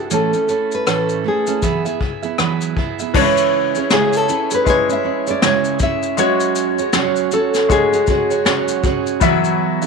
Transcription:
Already playing: D4 E4 G#4 A4
0.02 F#4
0.11 A2 E3 A3 C#4 E4 A4, shaker
0.33 A3 C#4 E4 A4, shaker
0.48 A3 C#4 E4 A4, shaker
0.72 B4, shaker
0.86 A2 E3 A3 C#4 E4 A4, cross-stick, shaker
1.09 shaker
1.24 A3 C#4 E4 G#4 A4
1.47 A3 C#4 E4 A4, shaker
1.62 E3 F#3 B3 E4 G#4 E5, kick, shaker
1.85 B3 E4 G#4 E5, shaker
2.00 B3 E4 G#4 E5, kick
2.22 B3 E4 G#4 E5, shaker
2.38 E3 F#3 B3 E4 G#4 E5, cross-stick, shaker
2.61 shaker
2.77 B3 E4 G#4 E5, kick
2.99 B3 E4 G#4 E5, shaker
3.14 C#3 E3 G#3 C#4 D4 E4 G#4 C#5, kick, crash
3.21 E4
3.37 shaker
3.75 C#4 E4 G#4 C#5, shaker
3.90 C#3 G#3 C#4 E4 G#4 C#5, snare, shaker
4.13 A4, shaker
4.29 C#4 E4 G#4 C#5, shaker
4.51 C#4 E4 G#4 B4 C#5, shaker
4.65 G#3 E4 G#4, kick, shaker
4.70 C#5
4.89 C#4 E4 G#4 C#5, shaker
4.93 E5
5.03 C#4 E4 G#4 C#5
5.27 C#4 E4 G#4 C#5 D5, shaker
5.42 C#3 G#3 C#4 E4 G#4 C#5, snare, shaker
5.65 shaker
5.79 C#4 E4 G#4 C#5 E5, kick, shaker
6.03 shaker
6.17 F#3 G#3 C#4 F#4 G#4 C#5, shaker
6.40 shaker
6.56 shaker
6.78 F#4 G#4 C#5, shaker
6.93 F#3 C#4 F#4 G#4 C#5, snare, shaker
7.16 shaker
7.32 C#4 F#4 A4 C#5, shaker
7.54 snare, shaker
7.68 G#3 F#4 G#4 C#5, kick, shaker
7.92 F#4 G#4 C#5, shaker
8.07 C#4 F#4 G#4 C#5, kick, shaker
8.30 F#4 G#4 C#5, shaker
8.45 F#3 C#4 F#4 G#4 C#5, snare, shaker
8.68 shaker
8.83 C#4 F#4 G#4 C#5, kick, shaker
9.07 shaker
9.20 E3 F#3 G3 B3 E4 F#4 G#4 E5, kick, shaker
9.27 F#3
9.44 shaker
9.81 B3 E4 G#4 E5, shaker

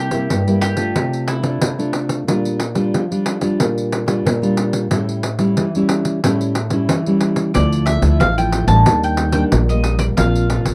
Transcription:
Already playing: C3 G4
0.11 G3 A#3 E4, pandeiro
0.30 G2, pandeiro
0.47 G3 A#3 E4, pandeiro
0.61 G4, pandeiro
0.77 A3 D4 F4, pandeiro
0.96 C3, pandeiro
1.13 pandeiro
1.28 E4, pandeiro
1.42 A3 D4 F4, pandeiro
1.61 C3, pandeiro
1.79 A3 D4 F4, pandeiro
1.93 pandeiro
2.09 pandeiro
2.27 A#2 G3 D4 F4, pandeiro
2.45 pandeiro
2.60 pandeiro
2.75 G3 D4 F4, pandeiro
2.94 F3, pandeiro
3.11 G3 D4 F4, pandeiro
3.26 pandeiro
3.41 G3 D4 F4, pandeiro
3.59 A#2, pandeiro
3.78 pandeiro
3.92 pandeiro
4.06 G3 D4 F4, pandeiro
4.25 A#2, pandeiro
4.42 G3 D4 F4, pandeiro
4.57 pandeiro
4.73 pandeiro
4.91 A2 G3 C#4 E4, pandeiro
5.09 pandeiro
5.23 pandeiro
5.39 G3 C#4 E4, pandeiro
5.57 E3, pandeiro
5.75 G3 C#4 E4, pandeiro
5.89 pandeiro
6.05 pandeiro
6.24 A2 G3 C#4 E4, pandeiro
6.41 pandeiro
6.55 pandeiro
6.70 G3 C#4 E4, pandeiro
6.89 E3, pandeiro
7.06 G3 C#4 E4, pandeiro
7.21 pandeiro
7.36 pandeiro
7.54 D2 D3 F3 A3 E4 D5, pandeiro
7.72 pandeiro
7.86 E5, pandeiro
8.02 D2 F3 A3 E4, pandeiro
8.20 A1 A2 F5, pandeiro
8.38 F3 A3 E4 G5, pandeiro
8.52 pandeiro
8.67 A1 G3 A#3 D4 A5, pandeiro
8.86 D#2 D#3, pandeiro
9.03 G5, pandeiro
9.17 pandeiro
9.32 G3 A#3 D4 G5, pandeiro
9.52 A#1 A#2, pandeiro
9.69 G3 A#3 D#5, pandeiro
9.84 pandeiro
9.99 D5, pandeiro
10.17 A#1 A#2 F3 C4 F4 F5, pandeiro
10.36 pandeiro
10.50 F3 C4 F4, pandeiro
10.65 A#1, pandeiro

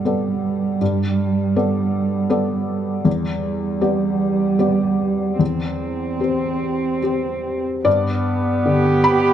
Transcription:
Already playing: G2 G3 B3 A4 D5
0.05 B3 A4 D5
0.81 G2
1.56 B3 A4 D5
2.30 B3 A4 D5
3.05 E2 G3
3.81 B3 G4 D5
4.59 B3 G4 D5
5.39 E2 C4
6.20 C4 G4 C5
7.03 C4 G4 C5
7.85 G2 B3 D5
8.65 D3 G4
9.04 B5

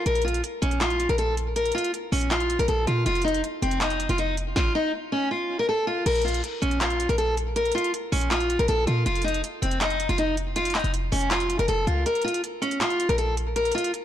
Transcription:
0.06 A#1 A#4, closed hi-hat
0.15 closed hi-hat
0.22 F4, closed hi-hat
0.28 closed hi-hat
0.34 closed hi-hat
0.44 closed hi-hat
0.62 A#1 C#4, closed hi-hat
0.71 closed hi-hat
0.81 F4, clap, closed hi-hat
0.90 closed hi-hat
1.00 closed hi-hat
1.09 A#1 A#4, closed hi-hat
1.18 A4, closed hi-hat
1.37 closed hi-hat
1.56 A#4, closed hi-hat
1.65 closed hi-hat
1.72 F4, closed hi-hat
1.78 closed hi-hat
1.84 closed hi-hat
1.94 closed hi-hat
2.12 A#1 C#4, open hi-hat
2.21 closed hi-hat
2.31 F4, clap, closed hi-hat
2.40 closed hi-hat
2.50 closed hi-hat
2.59 A#1 A#4, closed hi-hat
2.68 A#1 A4, closed hi-hat
2.87 A#2 F4, closed hi-hat
3.06 F1 F4, closed hi-hat
3.15 closed hi-hat
3.22 D#4, closed hi-hat
3.28 closed hi-hat
3.34 closed hi-hat
3.44 closed hi-hat
3.62 F1 C4, closed hi-hat
3.71 closed hi-hat
3.81 D#4, clap, closed hi-hat
3.90 closed hi-hat
4.00 closed hi-hat
4.09 F1 F4, closed hi-hat
4.18 D#4, closed hi-hat
4.37 closed hi-hat
4.56 F4, kick, snare
4.75 D#4
5.12 C#4
5.31 F4
5.59 A#4
5.69 A4
5.87 F4
6.06 A#1 A#4, closed hi-hat, crash
6.15 closed hi-hat
6.22 F4, closed hi-hat
6.28 closed hi-hat
6.34 closed hi-hat
6.44 closed hi-hat
6.62 A#1 C#4, closed hi-hat
6.71 closed hi-hat
6.81 F4, clap, closed hi-hat
6.90 closed hi-hat
7.00 closed hi-hat
7.09 A#1 A#4, closed hi-hat
7.18 A4, closed hi-hat
7.37 closed hi-hat
7.56 A#4, closed hi-hat
7.65 closed hi-hat
7.72 F4, closed hi-hat
7.78 closed hi-hat
7.84 closed hi-hat
7.94 closed hi-hat
8.12 A#1 C#4, open hi-hat
8.21 closed hi-hat
8.31 F4, clap, closed hi-hat
8.40 closed hi-hat
8.50 closed hi-hat
8.59 A#1 A#4, closed hi-hat
8.68 A#1 A4, closed hi-hat
8.87 A#2 F4, closed hi-hat
9.06 F1 F4, closed hi-hat
9.15 closed hi-hat
9.22 D#4, closed hi-hat
9.28 closed hi-hat
9.34 closed hi-hat
9.44 closed hi-hat
9.62 F1 C4, closed hi-hat
9.71 closed hi-hat
9.81 D#4, clap, closed hi-hat
9.90 closed hi-hat
10.00 closed hi-hat
10.09 F1 F4, closed hi-hat
10.18 D#4, closed hi-hat
10.37 closed hi-hat
10.56 F4, closed hi-hat
10.65 closed hi-hat
10.70 closed hi-hat
10.75 D#4, clap
10.79 closed hi-hat
10.84 F1, closed hi-hat
10.94 closed hi-hat
11.12 F1 C#4, open hi-hat
11.21 closed hi-hat
11.31 F4, clap, closed hi-hat
11.40 closed hi-hat
11.50 closed hi-hat
11.59 F1 A#4, closed hi-hat
11.68 F1 A4, closed hi-hat
11.87 C#2 F4, closed hi-hat
12.06 A#4, closed hi-hat
12.15 closed hi-hat
12.22 F4, closed hi-hat
12.28 closed hi-hat
12.34 closed hi-hat
12.44 closed hi-hat
12.62 C#4, closed hi-hat
12.71 closed hi-hat
12.81 F4, clap, closed hi-hat
12.90 closed hi-hat
13.00 closed hi-hat
13.09 A#1 A#4, closed hi-hat
13.18 A4, closed hi-hat
13.37 closed hi-hat
13.56 A#4, closed hi-hat
13.65 closed hi-hat
13.72 F4, closed hi-hat
13.78 closed hi-hat
13.84 closed hi-hat
13.94 closed hi-hat

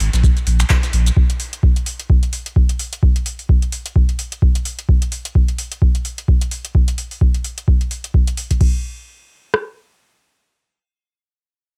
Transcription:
0.00 G#1, closed hi-hat, open hi-hat
0.13 A#1, snare, closed hi-hat, maracas
0.24 kick, closed hi-hat, maracas
0.37 closed hi-hat, maracas
0.47 A#1, closed hi-hat, open hi-hat
0.60 finger snap, closed hi-hat, maracas
0.70 kick, snare, clap, closed hi-hat, maracas
0.83 snare, closed hi-hat, maracas
0.93 A#1, closed hi-hat, open hi-hat
1.06 closed hi-hat, maracas
1.17 kick
1.30 closed hi-hat
1.40 open hi-hat
1.53 closed hi-hat
1.63 kick
1.76 closed hi-hat
1.86 open hi-hat
2.00 closed hi-hat
2.10 kick
2.23 closed hi-hat
2.33 open hi-hat
2.46 closed hi-hat
2.56 kick
2.69 closed hi-hat
2.79 open hi-hat
2.93 closed hi-hat
3.03 kick
3.16 closed hi-hat
3.26 open hi-hat
3.39 open hi-hat
3.49 kick
3.62 closed hi-hat
3.72 open hi-hat
3.86 closed hi-hat
3.96 kick
4.09 closed hi-hat
4.19 open hi-hat
4.32 closed hi-hat
4.42 kick
4.55 closed hi-hat
4.65 open hi-hat
4.79 closed hi-hat
4.89 kick
5.02 closed hi-hat
5.12 open hi-hat
5.25 closed hi-hat
5.35 kick
5.48 closed hi-hat
5.58 open hi-hat
5.72 closed hi-hat
5.82 kick
5.95 closed hi-hat
6.05 open hi-hat
6.18 closed hi-hat
6.28 kick
6.41 closed hi-hat
6.51 open hi-hat
6.65 closed hi-hat
6.75 kick
6.88 closed hi-hat
6.98 open hi-hat
7.11 open hi-hat
7.21 kick
7.34 closed hi-hat
7.44 open hi-hat
7.58 closed hi-hat
7.68 kick
7.81 closed hi-hat
7.91 open hi-hat
8.04 closed hi-hat
8.14 kick
8.27 closed hi-hat
8.37 open hi-hat
8.51 kick, closed hi-hat
8.61 kick, crash
9.54 cross-stick

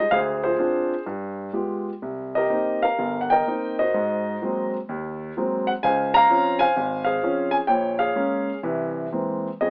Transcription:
0.11 D2 G#4 C5 F5
0.44 F4 G#4 C5
0.58 C4 D4 F4
1.06 G2
1.53 G#3 B3 F4 G4
2.02 C2
2.35 G4 A#4 D#5
2.50 A#3 C4 D#4
2.83 A#4 F5
2.99 G1
3.21 F#5
3.30 A#4 D#5 G5
3.47 A#3 C4 D#4
3.79 F#4 C5 D#5
3.94 G#2
4.42 F#3 G#3 A#3 C4
4.89 D#2
5.37 F#3 G#3 A#3 C4
5.67 F#5
5.83 C#2 C5 F5 G#5
6.14 F5 A#5
6.30 F3 C4 C#4
6.59 C5 F5 G#5
6.77 G#1
7.05 G#4 C5 F5
7.23 F3 C4 C#4
7.51 G#5
7.67 A#1 A#2 C#5 G5
7.99 G#4 C#5 F5
8.16 G#3 A#3 C#4
8.63 C2 E3
9.12 E3 G#3 A#3 C4
9.61 F2 G#4 D#5

